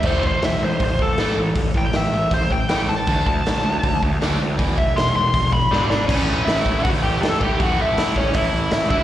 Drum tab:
CC |x-------|--------|--------|--------|
HH |--o-o-o-|o-o-o-o-|o-o-o-o-|o-o-o---|
SD |--o---o-|--o---o-|--o---o-|--o---oo|
BD |oo--oo--|oo--oo--|oo--oo--|oo--oo--|

CC |x-------|--------|
HH |--o-o-o-|o-o-o-o-|
SD |--o---o-|--o---o-|
BD |o--oo--o|o--oo--o|